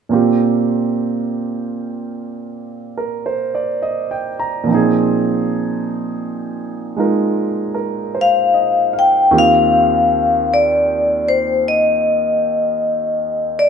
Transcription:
0.09 4.62 A#2 soft
0.09 4.67 A#3 soft
0.09 4.67 C4 soft
0.09 4.69 F4 soft
0.14 4.69 G4 soft
2.98 3.33 A#4 soft
3.26 3.65 C5 soft
3.55 4.07 D5 soft
3.82 4.31 D#5 soft
4.11 4.47 G5 soft
4.39 4.79 A#5 soft
4.64 9.28 A#2 soft
4.64 9.29 F3 soft
4.69 9.30 C4 soft
4.69 6.96 D#4 soft
4.74 9.33 G#4 soft
6.96 9.29 G#3 soft
6.96 9.30 D#4 soft
6.96 9.30 F4 soft
6.96 7.73 A#4 soft
7.74 8.35 A#4 soft
8.15 8.87 C5 soft
8.21 8.96 F5 medium
8.54 9.13 D#5 soft
8.93 9.52 F5 soft
8.99 9.35 G5 medium
9.31 13.69 D#2 soft
9.31 13.69 D#3 soft
9.31 13.69 C4 soft
9.31 13.69 F4 soft
9.31 13.69 G4 soft
9.38 10.54 F5 medium
10.54 11.29 D5 medium
11.29 11.67 C5 medium
11.68 13.63 D#5 medium
13.59 13.69 D5 medium

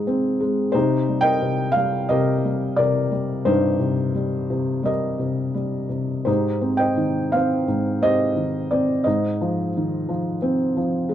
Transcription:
0.00 0.70 G#2 medium
0.00 0.76 D#3 soft
0.00 0.40 G#3 soft
0.00 0.72 D#4 medium
0.00 0.72 C5 soft
0.00 0.77 D#5 medium
0.07 0.72 C4 medium
0.40 0.73 G#3 medium
0.72 1.41 C3 medium
0.72 2.05 D#4 medium
0.72 2.05 G4 medium
0.72 1.20 C5 medium
1.09 1.74 G3 medium
1.21 2.09 A#4 medium
1.21 2.07 D#5 medium
1.21 1.75 G5 loud
1.42 2.09 C3 medium
1.72 2.09 F5 loud
1.76 2.43 G3 medium
2.09 2.77 C3 medium
2.09 2.77 G4 medium
2.09 2.77 A#4 medium
2.09 2.79 D#5 medium
2.45 3.10 G3 medium
2.76 3.78 C3 medium
2.76 3.46 G4 medium
2.76 4.12 A#4 medium
2.76 3.48 D5 medium
3.11 4.13 G3 soft
3.45 6.23 G2 medium
3.45 4.82 D#4 medium
3.45 4.82 G4 medium
3.45 4.89 C5 medium
3.79 4.49 C3 soft
4.15 4.82 G3 soft
4.50 5.18 C3 soft
4.83 5.53 G3 medium
4.83 6.24 G4 soft
4.83 6.23 A#4 soft
4.83 5.88 D#5 medium
5.19 5.88 C3 soft
5.54 6.24 G3 soft
5.89 6.25 C3 soft
6.25 7.66 G#2 medium
6.25 7.64 D#4 soft
6.25 7.64 G4 medium
6.25 6.77 C5 medium
6.61 7.32 C4 soft
6.77 7.33 C5 medium
6.77 8.01 D#5 medium
6.77 7.33 G5 medium
6.97 8.33 D#3 soft
7.32 8.00 C4 soft
7.32 8.02 C5 medium
7.32 8.04 F5 medium
7.68 9.02 G#2 medium
8.02 8.70 C4 soft
8.02 9.02 G4 medium
8.02 9.02 C5 medium
8.02 8.68 D#5 loud
8.36 9.03 D#3 soft
8.71 9.05 C4 soft
8.71 9.07 D5 medium
9.04 11.14 G#2 medium
9.04 10.37 C5 soft
9.04 9.69 D#5 medium
9.41 10.07 F3 soft
9.77 11.07 D#3 medium
10.09 10.75 F3 soft
10.42 11.14 C4 medium
10.77 11.14 F3 soft
11.09 11.14 G#3 medium

